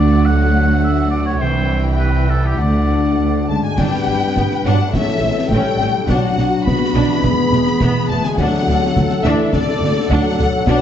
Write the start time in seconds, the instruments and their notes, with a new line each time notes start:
Already playing: double bass section D2, cello section D2, harp D3 F#4 D5, viola section A3, violin section F#4 F#5, oboe D5
0.07 harp D4
0.25 harp F#3, oboe F#5
0.46 harp D4
0.65 harp F#4
0.83 harp D5, oboe E5
1.03 harp F#4
1.10 oboe D5
1.22 harp D4
1.26 oboe C#5
1.40 double bass section C2, cello section C2, harp C3, viola section E3, violin section E4 G5, oboe C5
1.61 harp G3
1.79 harp E4
1.99 harp G4, oboe B4
2.19 harp E4
2.29 oboe A4
2.39 harp G3
2.46 oboe G4
2.58 double bass section D2, cello section D2, harp D3, viola section A3, violin section D4 F#5, oboe D5
2.79 harp D4
3.00 harp F#4
3.19 cello section D2, harp D5
3.39 harp F#4
3.49 cello section C#2, french horn section A3, violin section A5
3.59 harp G2 D4
3.63 french horn section G#3, harp B3, violin section G#5
3.69 harp D4
3.74 double bass section G1, harp B4, concert bass drum, snare, crash
3.78 cello section G2, french horn section G3, viola section D4 B4, violin section G5
4.08 double bass section G1, cello section G2, viola section D4
4.36 double bass section G1, cello section G2, viola section B3, concert bass drum, snare
4.51 snare
4.64 double bass section G1, cello section G2, french horn section F#3, viola section D4, violin section F#5, snare
4.77 harp A2
4.81 harp A3
4.86 harp C#4
4.90 double bass section A1, cello section A2, french horn section E3, harp C#5, concert bass drum, snare
4.95 viola section C#4 A4, violin section E5
5.22 double bass section A1, cello section A2, viola section A3
5.50 double bass section A1, cello section A2, french horn section G3, viola section C#4, violin section G5, concert bass drum
5.79 double bass section A1, cello section A2, viola section C#4, snare
5.91 harp B2
5.96 harp F#3
6.00 harp D4
6.05 double bass section B1, french horn section F#3, harp B4, violin section F#5
6.09 cello section B2, viola section D4 F#4, violin section F#5, concert bass drum, snare
6.37 double bass section B1, cello section B2, viola section D4, snare
6.65 double bass section B1, cello section B2, french horn section B3, viola section B3, violin section B5, concert bass drum, snare
6.94 double bass section B1, cello section B2, viola section D4
7.06 harp E3
7.10 harp G#3
7.15 harp E4
7.19 double bass section E1, harp B4
7.24 cello section E2, viola section B3 G#4, concert bass drum, snare
7.52 double bass section E1, cello section E2, viola section G#3, snare
7.67 snare
7.80 double bass section E1, cello section E2, viola section B3, concert bass drum, snare
8.09 double bass section E1, cello section E2, french horn section A3, viola section B3, violin section A5
8.21 harp D3, violin section G#5, snare
8.25 french horn section G#3, harp A3, violin section G#5
8.30 harp F#4
8.34 double bass section D2, harp D5, violin section F#5, concert bass drum, snare
8.38 cello section D2, french horn section F#3, viola section D4 A4, violin section F#5
8.68 cello section D2, double bass section D2, viola section D4
8.95 cello section D2, double bass section D2, viola section A3, concert bass drum, snare
9.10 snare
9.23 cello section D2, double bass section D2, french horn section E3, viola section D4, violin section E5, snare
9.52 cello section D2, double bass section D2, french horn section D3, viola section D4, violin section D5, concert bass drum, snare
9.81 double bass section D2, cello section D2, viola section A3
10.10 cello section D2, double bass section D2, french horn section F#3, viola section D4, violin section F#5, concert bass drum
10.38 cello section D2, double bass section D2, viola section D4, snare
10.49 harp B2
10.53 harp B3
10.58 harp F#4
10.62 double bass section B1, harp D5
10.67 cello section B2, french horn section F#3, viola section D4 B4, violin section F#5, concert bass drum, snare